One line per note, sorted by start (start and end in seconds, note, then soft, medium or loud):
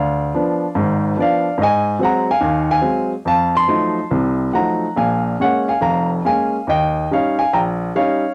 0.00 0.30 D2 medium
0.00 1.02 D5 medium
0.00 1.03 F5 medium
0.34 0.64 F3 medium
0.34 0.65 B3 soft
0.34 0.65 D4 medium
0.75 1.13 G#1 medium
0.75 1.13 G#2 medium
1.17 1.47 F3 soft
1.17 1.47 B3 soft
1.17 1.47 D4 medium
1.17 1.59 D5 medium
1.22 1.64 F5 medium
1.58 1.95 G#2 medium
1.58 2.00 D#5 medium
1.63 2.04 G#5 loud
1.99 2.29 F#3 medium
1.99 2.29 G#3 soft
1.99 2.30 C4 medium
1.99 2.27 F#5 medium
2.04 2.28 A#5 medium
2.31 2.68 F5 medium
2.31 2.70 G#5 medium
2.41 2.78 D#2 medium
2.41 2.78 D#3 medium
2.71 3.09 F5 medium
2.71 3.10 G#5 medium
2.81 3.12 F#3 soft
2.81 3.12 G#3 soft
2.81 3.12 C4 medium
3.25 3.63 F2 medium
3.25 3.53 F5 medium
3.25 3.54 A5 medium
3.55 4.52 A5 medium
3.55 4.60 C6 loud
3.68 3.98 F3 soft
3.68 3.98 F#3 soft
3.68 3.98 A3 soft
3.68 3.98 D#4 medium
4.11 4.49 C2 medium
4.11 4.49 C3 medium
4.53 4.85 F3 soft
4.53 4.85 F#3 soft
4.53 4.85 A3 soft
4.53 4.85 D#4 soft
4.53 4.95 F#5 medium
4.53 4.96 A#5 medium
4.96 5.34 A#1 medium
4.96 5.34 A#2 medium
4.96 5.37 F5 medium
4.96 5.42 G#5 medium
5.40 5.70 G#3 soft
5.40 5.70 A#3 soft
5.40 5.70 C#4 medium
5.40 5.67 C#5 medium
5.40 5.70 F#5 medium
5.68 5.80 F5 medium
5.68 5.83 G#5 medium
5.81 6.19 F1 medium
5.81 6.19 F2 medium
5.81 6.08 F5 medium
5.81 6.09 A#5 medium
6.25 6.55 G#3 soft
6.25 6.55 A#3 soft
6.25 6.55 C#4 soft
6.25 6.66 F5 medium
6.25 6.66 G#5 medium
6.67 7.05 D#2 medium
6.67 7.08 D#5 medium
6.67 7.09 G5 medium
7.11 7.40 G3 soft
7.11 7.40 C#4 soft
7.11 7.40 D#4 medium
7.11 7.38 C#5 medium
7.11 7.37 F5 medium
7.39 7.52 F5 medium
7.39 7.54 G#5 medium
7.53 7.89 A#1 medium
7.53 7.60 G5 medium
7.53 7.59 A#5 medium
7.95 8.23 G3 medium
7.95 8.23 C#4 soft
7.95 8.23 D#4 medium
7.95 8.33 C#5 medium
7.95 8.34 F5 medium